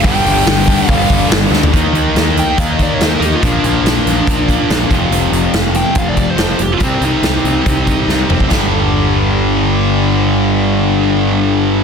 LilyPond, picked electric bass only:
\new Staff \with { instrumentName = "Picked electric bass" } { \clef bass \time 4/4 \key g \minor \tempo 4 = 142 g,,8 g,,8 g,,4 g,,8 g,,8 g,,8 d,8 | ees,8 ees,8 ees,4 ees,4 ees,8 ees,8 | bes,,8 bes,,8 bes,,8 bes,,8 bes,,4 bes,,8 f,,8 | f,,8 f,,8 f,,4 f,,4 f,,8 f,,8 |
c,8 c,8 c,8 c,8 c,4 c,8 f,,8 | g,,1~ | g,,1 | }